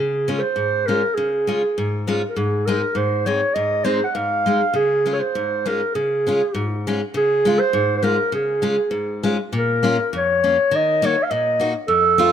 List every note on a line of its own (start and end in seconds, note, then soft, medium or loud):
0.00 0.41 C#3 medium
0.00 0.41 G#4 medium
0.28 0.40 G#3 medium
0.28 0.41 C#4 soft
0.28 0.40 F4 soft
0.39 0.88 C5 medium
0.56 1.01 G#2 soft
0.86 1.01 G#3 soft
0.86 1.01 C#4 soft
0.86 1.01 F4 soft
0.86 1.16 A#4 medium
1.14 1.63 C#3 medium
1.14 2.07 G#4 medium
1.47 1.61 G#3 medium
1.47 1.61 C#4 soft
1.47 1.61 F4 medium
1.78 2.22 G#2 medium
2.07 2.21 G#3 medium
2.07 2.21 C#4 soft
2.07 2.21 F4 medium
2.28 2.38 A#4 medium
2.36 2.81 G#2 medium
2.36 2.67 G#4 medium
2.66 2.81 G#3 medium
2.66 2.81 C4 soft
2.66 2.81 D#4 medium
2.66 2.99 A#4 medium
2.95 3.41 G#2 medium
2.95 3.25 C5 medium
3.26 3.40 G#3 soft
3.26 3.40 C4 soft
3.26 3.40 D#4 soft
3.26 3.56 C#5 medium
3.54 4.01 G#2 medium
3.54 3.86 D#5 loud
3.84 3.99 G#3 medium
3.84 3.99 C4 soft
3.84 3.99 D#4 soft
3.84 4.03 C5 medium
4.04 4.16 F#5 medium
4.14 4.61 G#2 medium
4.14 4.75 F5 medium
4.46 4.60 G#3 soft
4.46 4.61 C4 soft
4.46 4.61 D#4 soft
4.73 5.21 C#3 medium
4.73 5.15 G#4 medium
5.06 5.20 G#3 soft
5.06 5.21 C#4 soft
5.06 5.20 F4 soft
5.14 5.21 C#5 medium
5.20 5.68 C5 medium
5.35 5.81 G#2 medium
5.66 5.80 G#3 soft
5.66 5.81 C#4 soft
5.66 5.80 F4 soft
5.66 5.95 A#4 medium
5.95 6.41 C#3 soft
5.95 6.82 G#4 medium
6.27 6.40 G#3 soft
6.27 6.40 C#4 soft
6.27 6.41 F4 medium
6.54 7.00 G#2 medium
6.87 7.00 G#3 medium
6.87 7.00 C#4 soft
6.87 7.00 F4 medium
7.14 7.58 C#3 medium
7.14 7.60 G#4 medium
7.45 7.58 G#3 medium
7.45 7.58 C#4 soft
7.45 7.59 F4 medium
7.59 7.96 C5 medium
7.73 8.17 G#2 medium
7.97 8.04 C5 medium
8.03 8.15 G#3 soft
8.03 8.16 C#4 soft
8.03 8.16 F4 soft
8.03 8.31 A#4 medium
8.32 8.76 C#3 medium
8.32 9.20 G#4 medium
8.62 8.75 G#3 soft
8.62 8.75 C#4 soft
8.62 8.75 F4 medium
8.91 9.36 G#2 medium
9.23 9.36 G#3 medium
9.23 9.36 C#4 soft
9.23 9.36 F4 medium
9.53 9.97 A#2 medium
9.57 10.10 A#4 medium
9.83 9.96 A#3 medium
9.83 9.96 C#4 medium
9.83 9.96 F4 medium
10.13 10.57 F2 medium
10.17 10.77 C#5 medium
10.44 10.56 A#3 soft
10.44 10.56 C#4 soft
10.44 10.56 F4 soft
10.71 11.15 D#3 medium
10.75 11.07 D#5 medium
11.02 11.14 A#3 medium
11.02 11.15 D#4 medium
11.02 11.15 F#4 medium
11.02 11.24 C#5 medium
11.23 11.32 F5 medium
11.31 11.74 A#2 medium
11.31 11.74 D#5 loud
11.60 11.72 A#3 soft
11.60 11.72 D#4 soft
11.60 11.73 F#4 medium
11.88 12.32 F2 medium
11.88 12.32 A4 loud
12.18 12.31 A3 medium
12.18 12.31 C4 soft
12.18 12.31 F4 medium